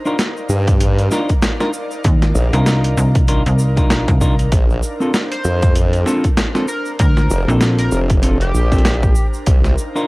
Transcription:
0.00 4.52 D#4 medium
0.00 10.07 A#4 medium
0.00 1.57 C5 medium
0.00 5.77 F5 medium
0.05 0.16 D4 medium
0.05 0.16 D#4 medium
0.05 0.16 F4 medium
0.05 0.16 A#4 medium
0.05 cabasa soft
0.14 5.49 D5 medium
0.19 snare loud
0.19 closed hi-hat medium
0.19 cabasa medium
0.37 cabasa soft
0.49 1.09 G2 medium
0.49 cabasa loud
0.68 kick loud
0.68 closed hi-hat medium
0.68 cabasa soft
0.81 closed hi-hat medium
0.81 cabasa medium
0.98 closed hi-hat soft
0.98 cabasa soft
1.11 1.32 D4 loud
1.11 1.32 D#4 medium
1.11 1.32 F4 medium
1.11 1.32 A#4 loud
1.11 snare soft
1.11 cabasa medium
1.29 kick medium
1.29 closed hi-hat soft
1.29 cabasa soft
1.42 snare loud
1.42 closed hi-hat medium
1.42 cabasa medium
1.60 1.70 D4 medium
1.60 1.70 D#4 medium
1.60 1.70 F4 medium
1.60 1.70 A#4 medium
1.60 snare medium
1.60 cabasa soft
1.73 cabasa loud
1.91 cabasa soft
2.04 2.33 D#2 loud
2.04 kick loud
2.04 closed hi-hat medium
2.04 cabasa medium
2.22 snare medium
2.22 closed hi-hat soft
2.22 cabasa soft
2.35 2.50 A#1 loud
2.35 cabasa medium
2.53 2.95 C2 loud
2.53 3.25 D4 medium
2.53 3.25 D#4 medium
2.53 3.25 F4 medium
2.53 3.25 A#4 loud
2.53 closed hi-hat soft
2.53 cabasa soft
2.66 snare loud
2.66 closed hi-hat medium
2.66 cabasa medium
2.84 closed hi-hat medium
2.84 cabasa soft
2.97 3.43 C2 loud
2.97 cabasa loud
3.15 kick loud
3.15 closed hi-hat medium
3.15 cabasa soft
3.28 3.42 D4 medium
3.28 3.42 D#4 medium
3.28 3.42 F4 medium
3.28 3.42 A#4 medium
3.28 closed hi-hat medium
3.28 cabasa soft
3.46 3.88 C2 loud
3.46 closed hi-hat soft
3.46 cabasa soft
3.59 cabasa medium
3.77 4.18 D4 medium
3.77 4.18 D#4 medium
3.77 4.18 F4 medium
3.77 4.18 A#4 loud
3.77 kick medium
3.77 closed hi-hat soft
3.77 cabasa soft
3.88 4.05 B1 loud
3.88 snare loud
3.88 closed hi-hat medium
3.88 cabasa soft
4.08 4.50 C2 loud
4.08 kick loud
4.08 closed hi-hat soft
4.08 cabasa soft
4.21 4.35 D4 medium
4.21 4.35 D#4 medium
4.21 4.35 F4 medium
4.21 4.35 A#4 loud
4.21 kick medium
4.21 cabasa loud
4.39 closed hi-hat soft
4.39 cabasa soft
4.52 4.81 A#1 loud
4.52 9.47 D4 medium
4.52 kick loud
4.52 closed hi-hat medium
4.52 cabasa medium
4.70 cabasa soft
4.75 10.07 C5 medium
4.83 cabasa medium
5.00 5.11 C4 medium
5.00 5.11 D4 medium
5.00 5.11 F4 medium
5.00 5.11 A4 medium
5.00 cabasa soft
5.14 snare loud
5.14 closed hi-hat medium
5.14 cabasa medium
5.31 5.76 C5 medium
5.31 closed hi-hat medium
5.31 cabasa soft
5.44 6.05 F2 loud
5.44 cabasa loud
5.62 kick loud
5.62 closed hi-hat medium
5.62 cabasa soft
5.75 closed hi-hat medium
5.75 cabasa soft
5.93 closed hi-hat soft
5.93 cabasa soft
6.06 6.27 C4 loud
6.06 6.27 D4 medium
6.06 6.27 F4 medium
6.06 6.27 A4 loud
6.06 snare soft
6.06 cabasa medium
6.24 kick medium
6.24 closed hi-hat soft
6.24 cabasa soft
6.37 snare loud
6.37 closed hi-hat medium
6.37 cabasa medium
6.55 6.65 C4 medium
6.55 6.65 D4 medium
6.55 6.65 F4 medium
6.55 6.65 A4 medium
6.55 snare medium
6.55 cabasa soft
6.68 6.91 A#4 medium
6.68 cabasa medium
6.86 cabasa soft
6.99 7.28 D2 loud
6.99 7.48 A#4 loud
6.99 kick loud
6.99 closed hi-hat medium
6.99 cabasa medium
7.17 snare medium
7.17 cabasa soft
7.30 7.45 F1 loud
7.30 cabasa loud
7.48 7.90 A#1 loud
7.48 8.20 C4 medium
7.48 8.20 D4 medium
7.48 8.20 F4 medium
7.48 8.20 A4 loud
7.48 cabasa soft
7.61 snare loud
7.61 closed hi-hat medium
7.61 cabasa medium
7.79 7.99 A#4 medium
7.79 closed hi-hat medium
7.79 cabasa soft
7.92 8.52 F1 loud
7.92 cabasa medium
8.10 kick loud
8.10 closed hi-hat medium
8.10 cabasa soft
8.23 8.37 C4 medium
8.23 8.37 D4 medium
8.23 8.37 F4 medium
8.23 8.37 A4 medium
8.23 closed hi-hat medium
8.23 cabasa medium
8.41 9.27 G4 loud
8.41 closed hi-hat soft
8.41 cabasa soft
8.54 9.14 A#1 loud
8.54 cabasa medium
8.72 8.82 C4 loud
8.72 8.82 D4 medium
8.72 8.82 F4 medium
8.72 8.82 A4 loud
8.72 kick medium
8.72 closed hi-hat soft
8.72 cabasa soft
8.78 closed hi-hat soft
8.85 snare loud
8.85 closed hi-hat medium
8.85 cabasa medium
8.94 closed hi-hat soft
9.03 kick loud
9.03 cabasa soft
9.15 cabasa medium
9.34 cabasa soft
9.46 9.76 C2 loud
9.46 10.07 D#4 medium
9.46 kick loud
9.46 closed hi-hat medium
9.46 cabasa medium
9.64 snare medium
9.64 cabasa soft
9.74 10.07 F5 medium
9.78 cabasa medium
9.96 10.06 D4 medium
9.96 10.06 D#4 medium
9.96 10.06 F4 medium
9.96 10.06 A#4 loud
9.96 cabasa soft

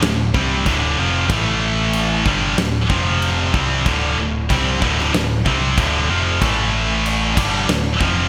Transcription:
0.02 0.32 D1 medium
0.02 0.28 D2 medium
0.02 0.29 A2 medium
0.02 snare loud
0.02 crash medium
0.34 0.64 C2 medium
0.34 0.66 C3 medium
0.34 0.66 G3 medium
0.34 0.66 C4 medium
0.34 kick loud
0.66 0.96 D1 medium
0.66 0.97 D2 medium
0.66 0.98 A2 medium
0.66 0.98 D3 medium
0.66 kick loud
0.66 crash medium
0.98 1.28 F1 medium
0.98 1.29 F2 medium
0.98 1.30 C3 loud
0.98 1.30 F3 loud
1.29 2.22 A1 loud
1.29 2.25 A2 loud
1.29 2.25 E3 loud
1.29 2.25 A3 loud
1.29 kick loud
1.29 crash medium
1.93 crash medium
2.26 2.56 G1 medium
2.26 2.57 G2 medium
2.26 2.57 D3 loud
2.26 2.58 G3 loud
2.26 kick loud
2.58 2.88 D1 medium
2.58 2.83 D2 medium
2.58 2.84 A2 medium
2.58 snare loud
2.58 crash medium
2.89 3.50 F1 medium
2.89 3.52 F2 medium
2.89 3.51 C3 loud
2.89 3.53 F3 loud
2.89 kick loud
3.22 crash medium
3.53 3.84 C2 medium
3.53 3.84 C3 medium
3.53 3.85 G3 medium
3.53 3.85 C4 loud
3.53 kick loud
3.85 4.15 D1 loud
3.85 4.16 D2 loud
3.85 4.17 A2 loud
3.85 4.17 D3 loud
3.85 kick loud
3.85 crash medium
4.18 4.47 D1 medium
4.18 4.43 D2 medium
4.18 4.44 A2 medium
4.49 4.80 C2 loud
4.49 4.80 C3 medium
4.49 4.81 G3 loud
4.49 4.81 C4 loud
4.49 kick loud
4.49 crash medium
4.80 5.11 D1 medium
4.80 5.12 D2 medium
4.80 5.12 A2 loud
4.80 5.12 D3 loud
4.80 kick loud
4.99 snare soft
5.14 5.43 D1 medium
5.14 5.39 D2 medium
5.14 5.39 A2 medium
5.14 snare loud
5.14 crash medium
5.45 5.75 C2 medium
5.45 5.76 C3 medium
5.45 5.77 G3 medium
5.45 5.77 C4 loud
5.45 kick loud
5.77 6.07 D1 medium
5.77 6.08 D2 medium
5.77 6.08 A2 loud
5.77 6.09 D3 loud
5.77 kick loud
5.77 crash medium
6.09 6.39 F1 loud
6.09 6.40 F2 medium
6.09 6.40 C3 loud
6.09 6.41 F3 loud
6.41 7.33 A1 loud
6.41 7.36 A2 loud
6.41 7.36 E3 loud
6.41 7.36 A3 loud
6.41 kick loud
6.41 crash medium
7.06 crash medium
7.37 7.67 G1 medium
7.37 7.68 G2 loud
7.37 7.68 D3 medium
7.37 7.69 G3 loud
7.37 kick loud
7.37 crash loud
7.69 7.98 D1 medium
7.69 7.95 D2 medium
7.69 7.95 A2 medium
7.69 snare loud
7.69 crash medium
8.01 8.29 F1 medium
8.01 8.29 F2 medium
8.01 8.29 C3 medium
8.01 8.29 F3 medium
8.01 kick loud

